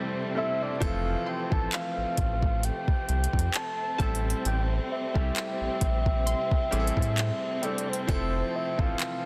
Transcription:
Already playing: string section C3 E3 G3 A3 C4, grand piano G3 A3 C4 E4 A4
0.35 grand piano G3 A3 C4 E4 A4, soft synth lead E5
0.62 soft synth lead D5
0.80 analog synth bass F1, grand piano E3 F3 A3 C4 A4, string section C4, soft synth lead F5, kick, closed hi-hat
1.26 soft synth lead G5, synth pluck C6
1.50 analog synth bass A1, grand piano E3 F3 A3 C4 A4, soft synth lead A5, kick
1.72 soft synth lead F5, clap, closed hi-hat
1.97 analog synth bass A1
2.17 analog synth bass A1, kick, closed hi-hat
2.42 kick
2.63 soft synth lead G5, closed hi-hat
2.88 kick
3.09 analog synth bass C2, closed hi-hat
3.24 closed hi-hat
3.33 analog synth bass F2, kick
3.39 closed hi-hat
3.54 soft synth lead A5, clap, closed hi-hat
3.98 analog synth bass A1, string section C3 G3, grand piano G3 A3 C4 E4 A4, synth pluck A5, kick, closed hi-hat
4.15 closed hi-hat
4.30 closed hi-hat
4.45 analog synth bass A1, soft synth lead G5, closed hi-hat
4.92 soft synth lead E5
5.14 analog synth bass C2, grand piano G3 A3 C4 E4 G4, kick
5.36 clap, closed hi-hat
5.61 analog synth bass A#1
5.81 analog synth bass A#1, kick, closed hi-hat
6.06 kick
6.26 synth pluck C6, closed hi-hat
6.51 kick
6.71 analog synth bass A1, grand piano G3 A3 C4 E4 G#4, synth pluck D6, closed hi-hat
6.80 grand piano A4
6.87 closed hi-hat
6.97 analog synth bass A2, kick
7.02 closed hi-hat
7.18 clap, closed hi-hat
7.62 grand piano G3 A3 C4 E4 A4, soft synth lead D5, closed hi-hat
7.78 closed hi-hat
7.89 soft synth lead C5
7.93 closed hi-hat
8.07 analog synth bass F1, grand piano F3 A3 C4 E4 A4, string section A4, kick, closed hi-hat
8.56 soft synth lead E5
8.77 analog synth bass A1, grand piano E3 F3 A3 C4 A4, soft synth lead F5, kick
8.99 clap, closed hi-hat

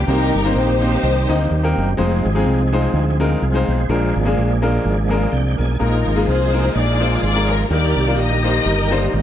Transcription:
0.06 fingered electric bass C2, grand piano C3 A#3 C4 D#4 G4 C5, tonewheel organ D3 G3 A#3 C4 G4, string section D#4 G4 A#4
0.13 tonewheel organ D#3
0.34 fingered electric bass G1
0.44 grand piano A#3 C4 D#4 G4 C5
0.55 fingered electric bass A#1, string section D#4 G4 C5
0.81 grand piano A#3 C4 D#4 G4 C5
1.03 fingered electric bass C2
1.29 fingered electric bass D2, grand piano A#3 C4 D#4 G4 D#5
1.51 fingered electric bass D#2
1.63 grand piano A#3 C4 D#4 G4 A#4
1.77 fingered electric bass F#1
1.97 fingered electric bass F1, tonewheel organ F3 G#3 C4 D#4 G#4, grand piano G#3 C4 D#4 F4 C5
2.25 fingered electric bass G#1
2.35 grand piano G#3 C4 D#4 F4 G#4
2.46 fingered electric bass C2
2.72 grand piano G#3 C4 D#4 F4 C5
2.94 fingered electric bass D2
3.20 grand piano G#3 C4 D#4 F4 A#4, tonewheel organ D4 F4
3.42 fingered electric bass C2, tonewheel organ F4 G#4
3.54 grand piano G#3 C4 D#4 F4 C5
3.68 fingered electric bass B1, tonewheel organ G#4 C5
3.89 fingered electric bass A#1, grand piano A#2 G#3 A#3 D4 F4 A#4, tonewheel organ F3 G#3 A#3 D4 G#4
4.16 fingered electric bass G#1
4.25 grand piano G#3 A#3 D4 F4 G#4
4.38 fingered electric bass A#1
4.62 grand piano G#3 A#3 D4 F4 A#4
4.85 fingered electric bass G#1
5.10 grand piano G#3 A#3 D4 F4 A#4
5.31 fingered electric bass C2, grand piano D5, tonewheel organ G5
5.58 fingered electric bass B1, grand piano A#4, tonewheel organ G#5
5.79 fingered electric bass A#1, grand piano A#2 G#3 A#3 D#4 F4 A#4, tonewheel organ F3 G#3 A#3 D#4 G#4, string section D#4 F4 A#4
6.06 fingered electric bass G#1
6.16 grand piano G#3 A#3 D#4 F4 G#4
6.27 fingered electric bass C2, string section D#4 G#4 C5
6.53 grand piano G#3 A#3 D#4 F4 A#4
6.75 fingered electric bass A#1, string section F4 G#4 D5
7.00 grand piano G#3 A#3 D#4 F4 C5
7.23 fingered electric bass G#1, string section D5
7.35 grand piano G#3 A#3 D#4 F4 A#4
7.49 string section A#4
7.70 fingered electric bass D#2, tonewheel organ D#3 G3 A#3 D#4 G4, grand piano D#3 G3 A#3 D4 D#4 A#4, string section G4 A#4 D5
7.96 fingered electric bass C2
8.07 grand piano G3 A#3 D4 D#4 F4
8.18 fingered electric bass A#1, string section G4 A#4 D#5
8.43 grand piano G3 A#3 D#4 C5
8.66 fingered electric bass G1
8.91 grand piano G3 A#3 D4 D#4 C5
9.14 fingered electric bass G#1

